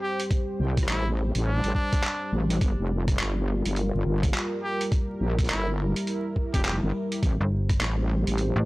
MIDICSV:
0, 0, Header, 1, 6, 480
1, 0, Start_track
1, 0, Tempo, 576923
1, 255, Time_signature, 4, 2, 24, 8
1, 7199, End_track
2, 0, Start_track
2, 0, Title_t, "Analog synth pad"
2, 0, Program_c, 0, 89
2, 0, Note_on_c, 0, 55, 78
2, 0, Note_on_c, 0, 67, 74
2, 0, Note_on_c, 0, 72, 90
2, 2140, Note_off_c, 0, 72, 0
2, 2141, Note_off_c, 0, 67, 0
2, 2173, Note_on_c, 0, 70, 89
2, 2174, Note_on_c, 0, 65, 75
2, 4075, Note_off_c, 0, 65, 0
2, 4092, Note_on_c, 0, 64, 76
2, 5981, Note_off_c, 0, 70, 0
2, 5994, Note_off_c, 0, 64, 0
2, 6013, Note_on_c, 0, 72, 89
2, 6014, Note_on_c, 0, 67, 75
2, 7199, Note_off_c, 0, 55, 0
2, 7199, Note_off_c, 0, 67, 0
2, 7199, Note_off_c, 0, 72, 0
2, 7199, End_track
3, 0, Start_track
3, 0, Title_t, "Trumpet"
3, 0, Program_c, 1, 56
3, 17, Note_on_c, 1, 67, 90
3, 185, Note_off_c, 1, 67, 0
3, 735, Note_on_c, 1, 64, 90
3, 903, Note_off_c, 1, 64, 0
3, 1214, Note_on_c, 1, 62, 90
3, 1436, Note_off_c, 1, 62, 0
3, 1453, Note_on_c, 1, 62, 97
3, 1934, Note_off_c, 1, 62, 0
3, 3853, Note_on_c, 1, 67, 90
3, 4023, Note_off_c, 1, 67, 0
3, 4572, Note_on_c, 1, 64, 90
3, 4742, Note_off_c, 1, 64, 0
3, 5440, Note_on_c, 1, 67, 85
3, 5500, Note_off_c, 1, 67, 0
3, 5531, Note_on_c, 1, 67, 72
3, 5628, Note_off_c, 1, 67, 0
3, 7199, End_track
4, 0, Start_track
4, 0, Title_t, "FM bass"
4, 0, Program_c, 2, 39
4, 6161, Note_on_c, 2, 31, 99
4, 6479, Note_off_c, 2, 31, 0
4, 7121, Note_on_c, 2, 33, 94
4, 7199, Note_off_c, 2, 33, 0
4, 7199, End_track
5, 0, Start_track
5, 0, Title_t, "Wobble bass"
5, 0, Program_c, 3, 39
5, 495, Note_on_c, 3, 36, 93
5, 720, Note_off_c, 3, 36, 0
5, 734, Note_on_c, 3, 33, 93
5, 1100, Note_off_c, 3, 33, 0
5, 1123, Note_on_c, 3, 33, 99
5, 1340, Note_off_c, 3, 33, 0
5, 1363, Note_on_c, 3, 33, 96
5, 1440, Note_off_c, 3, 33, 0
5, 1932, Note_on_c, 3, 33, 92
5, 2159, Note_off_c, 3, 33, 0
5, 2173, Note_on_c, 3, 31, 97
5, 2299, Note_off_c, 3, 31, 0
5, 2322, Note_on_c, 3, 29, 96
5, 2639, Note_off_c, 3, 29, 0
5, 2653, Note_on_c, 3, 31, 93
5, 3019, Note_off_c, 3, 31, 0
5, 3042, Note_on_c, 3, 31, 99
5, 3259, Note_off_c, 3, 31, 0
5, 3282, Note_on_c, 3, 31, 97
5, 3359, Note_off_c, 3, 31, 0
5, 3372, Note_on_c, 3, 31, 100
5, 3599, Note_off_c, 3, 31, 0
5, 4333, Note_on_c, 3, 34, 92
5, 4559, Note_off_c, 3, 34, 0
5, 4574, Note_on_c, 3, 31, 98
5, 4939, Note_off_c, 3, 31, 0
5, 5440, Note_on_c, 3, 29, 94
5, 5658, Note_off_c, 3, 29, 0
5, 5681, Note_on_c, 3, 31, 96
5, 5759, Note_off_c, 3, 31, 0
5, 6013, Note_on_c, 3, 33, 91
5, 6139, Note_off_c, 3, 33, 0
5, 6493, Note_on_c, 3, 33, 94
5, 6859, Note_off_c, 3, 33, 0
5, 6882, Note_on_c, 3, 33, 100
5, 7099, Note_off_c, 3, 33, 0
5, 7199, End_track
6, 0, Start_track
6, 0, Title_t, "Drums"
6, 163, Note_on_c, 9, 42, 68
6, 246, Note_off_c, 9, 42, 0
6, 254, Note_on_c, 9, 36, 116
6, 255, Note_on_c, 9, 42, 52
6, 338, Note_off_c, 9, 36, 0
6, 338, Note_off_c, 9, 42, 0
6, 643, Note_on_c, 9, 36, 103
6, 644, Note_on_c, 9, 42, 65
6, 689, Note_on_c, 9, 37, 36
6, 726, Note_off_c, 9, 36, 0
6, 727, Note_off_c, 9, 42, 0
6, 735, Note_on_c, 9, 39, 114
6, 735, Note_on_c, 9, 42, 52
6, 773, Note_off_c, 9, 37, 0
6, 819, Note_off_c, 9, 39, 0
6, 819, Note_off_c, 9, 42, 0
6, 1123, Note_on_c, 9, 42, 65
6, 1206, Note_off_c, 9, 42, 0
6, 1363, Note_on_c, 9, 42, 53
6, 1446, Note_off_c, 9, 42, 0
6, 1454, Note_on_c, 9, 36, 60
6, 1537, Note_off_c, 9, 36, 0
6, 1602, Note_on_c, 9, 42, 66
6, 1603, Note_on_c, 9, 36, 107
6, 1686, Note_off_c, 9, 36, 0
6, 1686, Note_off_c, 9, 42, 0
6, 1694, Note_on_c, 9, 39, 118
6, 1694, Note_on_c, 9, 42, 54
6, 1777, Note_off_c, 9, 39, 0
6, 1777, Note_off_c, 9, 42, 0
6, 2082, Note_on_c, 9, 42, 70
6, 2166, Note_off_c, 9, 42, 0
6, 2173, Note_on_c, 9, 36, 119
6, 2174, Note_on_c, 9, 42, 51
6, 2256, Note_off_c, 9, 36, 0
6, 2257, Note_off_c, 9, 42, 0
6, 2562, Note_on_c, 9, 36, 108
6, 2562, Note_on_c, 9, 37, 36
6, 2562, Note_on_c, 9, 42, 62
6, 2645, Note_off_c, 9, 36, 0
6, 2645, Note_off_c, 9, 37, 0
6, 2645, Note_off_c, 9, 42, 0
6, 2653, Note_on_c, 9, 39, 121
6, 2653, Note_on_c, 9, 42, 53
6, 2736, Note_off_c, 9, 39, 0
6, 2736, Note_off_c, 9, 42, 0
6, 3041, Note_on_c, 9, 42, 64
6, 3124, Note_off_c, 9, 42, 0
6, 3131, Note_on_c, 9, 42, 51
6, 3214, Note_off_c, 9, 42, 0
6, 3521, Note_on_c, 9, 36, 109
6, 3521, Note_on_c, 9, 42, 65
6, 3604, Note_off_c, 9, 36, 0
6, 3604, Note_off_c, 9, 42, 0
6, 3613, Note_on_c, 9, 39, 123
6, 3613, Note_on_c, 9, 42, 53
6, 3696, Note_off_c, 9, 39, 0
6, 3696, Note_off_c, 9, 42, 0
6, 4001, Note_on_c, 9, 42, 65
6, 4084, Note_off_c, 9, 42, 0
6, 4092, Note_on_c, 9, 36, 120
6, 4092, Note_on_c, 9, 42, 49
6, 4175, Note_off_c, 9, 36, 0
6, 4175, Note_off_c, 9, 42, 0
6, 4481, Note_on_c, 9, 36, 107
6, 4481, Note_on_c, 9, 37, 34
6, 4481, Note_on_c, 9, 42, 57
6, 4494, Note_off_c, 9, 42, 0
6, 4494, Note_on_c, 9, 42, 38
6, 4497, Note_off_c, 9, 42, 0
6, 4497, Note_on_c, 9, 42, 45
6, 4529, Note_off_c, 9, 42, 0
6, 4529, Note_on_c, 9, 42, 31
6, 4543, Note_off_c, 9, 42, 0
6, 4543, Note_on_c, 9, 42, 26
6, 4557, Note_off_c, 9, 42, 0
6, 4557, Note_on_c, 9, 42, 22
6, 4564, Note_off_c, 9, 36, 0
6, 4565, Note_off_c, 9, 37, 0
6, 4572, Note_off_c, 9, 42, 0
6, 4572, Note_on_c, 9, 39, 115
6, 4572, Note_on_c, 9, 42, 48
6, 4655, Note_off_c, 9, 39, 0
6, 4655, Note_off_c, 9, 42, 0
6, 4961, Note_on_c, 9, 42, 61
6, 5044, Note_off_c, 9, 42, 0
6, 5052, Note_on_c, 9, 42, 47
6, 5135, Note_off_c, 9, 42, 0
6, 5292, Note_on_c, 9, 36, 58
6, 5375, Note_off_c, 9, 36, 0
6, 5440, Note_on_c, 9, 36, 106
6, 5441, Note_on_c, 9, 42, 64
6, 5524, Note_off_c, 9, 36, 0
6, 5524, Note_off_c, 9, 42, 0
6, 5533, Note_on_c, 9, 39, 123
6, 5533, Note_on_c, 9, 42, 51
6, 5616, Note_off_c, 9, 39, 0
6, 5616, Note_off_c, 9, 42, 0
6, 5923, Note_on_c, 9, 42, 64
6, 6006, Note_off_c, 9, 42, 0
6, 6012, Note_on_c, 9, 36, 114
6, 6013, Note_on_c, 9, 42, 47
6, 6095, Note_off_c, 9, 36, 0
6, 6096, Note_off_c, 9, 42, 0
6, 6402, Note_on_c, 9, 36, 102
6, 6402, Note_on_c, 9, 37, 36
6, 6402, Note_on_c, 9, 42, 58
6, 6485, Note_off_c, 9, 36, 0
6, 6485, Note_off_c, 9, 37, 0
6, 6485, Note_off_c, 9, 42, 0
6, 6493, Note_on_c, 9, 39, 115
6, 6493, Note_on_c, 9, 42, 49
6, 6576, Note_off_c, 9, 39, 0
6, 6576, Note_off_c, 9, 42, 0
6, 6882, Note_on_c, 9, 42, 61
6, 6966, Note_off_c, 9, 42, 0
6, 6972, Note_on_c, 9, 42, 48
6, 7056, Note_off_c, 9, 42, 0
6, 7199, End_track
0, 0, End_of_file